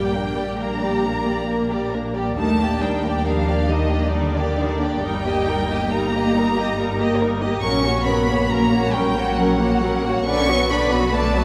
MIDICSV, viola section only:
0, 0, Header, 1, 2, 480
1, 0, Start_track
1, 0, Tempo, 887574
1, 1288, Time_signature, 3, 2, 24, 8
1, 2721, Tempo, 863309
1, 4641, Tempo, 879765
1, 6255, End_track
2, 0, Start_track
2, 0, Title_t, "Viola section"
2, 0, Program_c, 0, 48
2, 0, Note_on_c, 0, 55, 40
2, 0, Note_on_c, 0, 58, 39
2, 64, Note_off_c, 0, 58, 0
2, 70, Note_on_c, 0, 58, 40
2, 74, Note_on_c, 0, 62, 42
2, 76, Note_off_c, 0, 55, 0
2, 187, Note_off_c, 0, 58, 0
2, 193, Note_on_c, 0, 58, 40
2, 195, Note_on_c, 0, 55, 37
2, 200, Note_off_c, 0, 62, 0
2, 310, Note_off_c, 0, 58, 0
2, 316, Note_on_c, 0, 58, 42
2, 318, Note_on_c, 0, 62, 42
2, 321, Note_off_c, 0, 55, 0
2, 434, Note_off_c, 0, 58, 0
2, 435, Note_off_c, 0, 62, 0
2, 439, Note_on_c, 0, 55, 40
2, 444, Note_on_c, 0, 58, 42
2, 552, Note_off_c, 0, 58, 0
2, 559, Note_on_c, 0, 58, 38
2, 561, Note_on_c, 0, 62, 39
2, 565, Note_off_c, 0, 55, 0
2, 678, Note_off_c, 0, 58, 0
2, 680, Note_on_c, 0, 55, 39
2, 684, Note_on_c, 0, 58, 38
2, 687, Note_off_c, 0, 62, 0
2, 788, Note_off_c, 0, 58, 0
2, 794, Note_on_c, 0, 58, 46
2, 796, Note_on_c, 0, 62, 42
2, 806, Note_off_c, 0, 55, 0
2, 914, Note_off_c, 0, 58, 0
2, 915, Note_off_c, 0, 62, 0
2, 928, Note_on_c, 0, 58, 40
2, 931, Note_on_c, 0, 55, 41
2, 1041, Note_off_c, 0, 58, 0
2, 1047, Note_on_c, 0, 58, 40
2, 1049, Note_on_c, 0, 62, 39
2, 1050, Note_off_c, 0, 55, 0
2, 1155, Note_off_c, 0, 58, 0
2, 1161, Note_on_c, 0, 55, 44
2, 1162, Note_on_c, 0, 58, 40
2, 1168, Note_off_c, 0, 62, 0
2, 1273, Note_off_c, 0, 55, 0
2, 1280, Note_on_c, 0, 55, 44
2, 1284, Note_off_c, 0, 58, 0
2, 1284, Note_on_c, 0, 63, 48
2, 1394, Note_off_c, 0, 55, 0
2, 1396, Note_off_c, 0, 63, 0
2, 1397, Note_on_c, 0, 58, 39
2, 1397, Note_on_c, 0, 62, 42
2, 1519, Note_on_c, 0, 55, 43
2, 1519, Note_on_c, 0, 63, 42
2, 1520, Note_off_c, 0, 58, 0
2, 1520, Note_off_c, 0, 62, 0
2, 1635, Note_on_c, 0, 62, 40
2, 1640, Note_off_c, 0, 55, 0
2, 1640, Note_off_c, 0, 63, 0
2, 1641, Note_on_c, 0, 58, 41
2, 1756, Note_off_c, 0, 62, 0
2, 1758, Note_on_c, 0, 55, 45
2, 1759, Note_off_c, 0, 58, 0
2, 1761, Note_on_c, 0, 63, 41
2, 1867, Note_off_c, 0, 55, 0
2, 1869, Note_off_c, 0, 63, 0
2, 1870, Note_on_c, 0, 58, 42
2, 1875, Note_on_c, 0, 62, 45
2, 1989, Note_off_c, 0, 58, 0
2, 1991, Note_on_c, 0, 55, 42
2, 1992, Note_off_c, 0, 62, 0
2, 1993, Note_on_c, 0, 63, 44
2, 2105, Note_on_c, 0, 62, 40
2, 2108, Note_off_c, 0, 55, 0
2, 2108, Note_on_c, 0, 58, 42
2, 2109, Note_off_c, 0, 63, 0
2, 2217, Note_on_c, 0, 63, 48
2, 2218, Note_on_c, 0, 55, 47
2, 2225, Note_off_c, 0, 62, 0
2, 2226, Note_off_c, 0, 58, 0
2, 2333, Note_off_c, 0, 55, 0
2, 2333, Note_off_c, 0, 63, 0
2, 2341, Note_on_c, 0, 58, 44
2, 2342, Note_on_c, 0, 62, 42
2, 2463, Note_on_c, 0, 63, 45
2, 2465, Note_on_c, 0, 55, 44
2, 2468, Note_off_c, 0, 58, 0
2, 2469, Note_off_c, 0, 62, 0
2, 2585, Note_on_c, 0, 62, 48
2, 2587, Note_on_c, 0, 58, 43
2, 2592, Note_off_c, 0, 63, 0
2, 2593, Note_off_c, 0, 55, 0
2, 2714, Note_off_c, 0, 62, 0
2, 2715, Note_off_c, 0, 58, 0
2, 2716, Note_on_c, 0, 55, 51
2, 2718, Note_on_c, 0, 63, 53
2, 2833, Note_off_c, 0, 55, 0
2, 2834, Note_off_c, 0, 63, 0
2, 2841, Note_on_c, 0, 67, 47
2, 2842, Note_on_c, 0, 58, 44
2, 2962, Note_on_c, 0, 63, 46
2, 2964, Note_off_c, 0, 58, 0
2, 2964, Note_off_c, 0, 67, 0
2, 2964, Note_on_c, 0, 55, 49
2, 3077, Note_on_c, 0, 58, 44
2, 3081, Note_on_c, 0, 67, 44
2, 3084, Note_off_c, 0, 63, 0
2, 3085, Note_off_c, 0, 55, 0
2, 3201, Note_off_c, 0, 58, 0
2, 3203, Note_off_c, 0, 67, 0
2, 3203, Note_on_c, 0, 63, 51
2, 3205, Note_on_c, 0, 55, 48
2, 3316, Note_off_c, 0, 63, 0
2, 3317, Note_off_c, 0, 55, 0
2, 3321, Note_on_c, 0, 58, 48
2, 3322, Note_on_c, 0, 67, 48
2, 3443, Note_on_c, 0, 55, 46
2, 3443, Note_on_c, 0, 63, 46
2, 3444, Note_off_c, 0, 58, 0
2, 3444, Note_off_c, 0, 67, 0
2, 3556, Note_on_c, 0, 67, 51
2, 3558, Note_on_c, 0, 58, 47
2, 3565, Note_off_c, 0, 55, 0
2, 3565, Note_off_c, 0, 63, 0
2, 3682, Note_off_c, 0, 67, 0
2, 3682, Note_on_c, 0, 55, 54
2, 3683, Note_off_c, 0, 58, 0
2, 3685, Note_on_c, 0, 63, 52
2, 3796, Note_off_c, 0, 55, 0
2, 3797, Note_off_c, 0, 63, 0
2, 3811, Note_on_c, 0, 58, 51
2, 3811, Note_on_c, 0, 67, 50
2, 3927, Note_off_c, 0, 58, 0
2, 3927, Note_off_c, 0, 67, 0
2, 3937, Note_on_c, 0, 63, 55
2, 3938, Note_on_c, 0, 55, 54
2, 4045, Note_on_c, 0, 67, 53
2, 4046, Note_on_c, 0, 58, 52
2, 4049, Note_off_c, 0, 55, 0
2, 4049, Note_off_c, 0, 63, 0
2, 4161, Note_off_c, 0, 67, 0
2, 4162, Note_off_c, 0, 58, 0
2, 4164, Note_on_c, 0, 54, 60
2, 4167, Note_on_c, 0, 61, 57
2, 4272, Note_off_c, 0, 54, 0
2, 4274, Note_off_c, 0, 61, 0
2, 4277, Note_on_c, 0, 58, 47
2, 4280, Note_off_c, 0, 58, 0
2, 4280, Note_on_c, 0, 58, 52
2, 4399, Note_off_c, 0, 58, 0
2, 4400, Note_on_c, 0, 61, 54
2, 4402, Note_on_c, 0, 54, 52
2, 4520, Note_off_c, 0, 61, 0
2, 4521, Note_off_c, 0, 54, 0
2, 4521, Note_on_c, 0, 58, 46
2, 4523, Note_off_c, 0, 58, 0
2, 4523, Note_on_c, 0, 58, 50
2, 4642, Note_off_c, 0, 58, 0
2, 4644, Note_on_c, 0, 61, 55
2, 4646, Note_on_c, 0, 54, 55
2, 4753, Note_off_c, 0, 61, 0
2, 4754, Note_off_c, 0, 54, 0
2, 4764, Note_on_c, 0, 58, 49
2, 4765, Note_off_c, 0, 58, 0
2, 4765, Note_on_c, 0, 58, 58
2, 4881, Note_off_c, 0, 58, 0
2, 4884, Note_on_c, 0, 54, 54
2, 4885, Note_on_c, 0, 61, 56
2, 4995, Note_on_c, 0, 58, 52
2, 4996, Note_off_c, 0, 58, 0
2, 4996, Note_on_c, 0, 58, 51
2, 5001, Note_off_c, 0, 54, 0
2, 5001, Note_off_c, 0, 61, 0
2, 5114, Note_on_c, 0, 61, 58
2, 5117, Note_off_c, 0, 58, 0
2, 5122, Note_on_c, 0, 54, 59
2, 5228, Note_off_c, 0, 61, 0
2, 5232, Note_off_c, 0, 54, 0
2, 5244, Note_on_c, 0, 58, 52
2, 5247, Note_off_c, 0, 58, 0
2, 5247, Note_on_c, 0, 58, 56
2, 5363, Note_off_c, 0, 58, 0
2, 5370, Note_on_c, 0, 61, 57
2, 5372, Note_on_c, 0, 54, 58
2, 5481, Note_on_c, 0, 58, 56
2, 5482, Note_off_c, 0, 58, 0
2, 5482, Note_on_c, 0, 58, 60
2, 5485, Note_off_c, 0, 61, 0
2, 5486, Note_off_c, 0, 54, 0
2, 5601, Note_off_c, 0, 58, 0
2, 5604, Note_on_c, 0, 50, 67
2, 5610, Note_on_c, 0, 62, 63
2, 5714, Note_off_c, 0, 50, 0
2, 5718, Note_off_c, 0, 62, 0
2, 5729, Note_on_c, 0, 54, 58
2, 5730, Note_on_c, 0, 59, 58
2, 5845, Note_off_c, 0, 54, 0
2, 5845, Note_on_c, 0, 62, 59
2, 5846, Note_off_c, 0, 59, 0
2, 5846, Note_on_c, 0, 50, 56
2, 5963, Note_off_c, 0, 62, 0
2, 5963, Note_on_c, 0, 54, 54
2, 5963, Note_on_c, 0, 59, 54
2, 5964, Note_off_c, 0, 50, 0
2, 6079, Note_on_c, 0, 50, 59
2, 6081, Note_on_c, 0, 62, 61
2, 6082, Note_off_c, 0, 54, 0
2, 6082, Note_off_c, 0, 59, 0
2, 6192, Note_off_c, 0, 50, 0
2, 6192, Note_off_c, 0, 62, 0
2, 6197, Note_on_c, 0, 54, 59
2, 6201, Note_on_c, 0, 59, 58
2, 6255, Note_off_c, 0, 54, 0
2, 6255, Note_off_c, 0, 59, 0
2, 6255, End_track
0, 0, End_of_file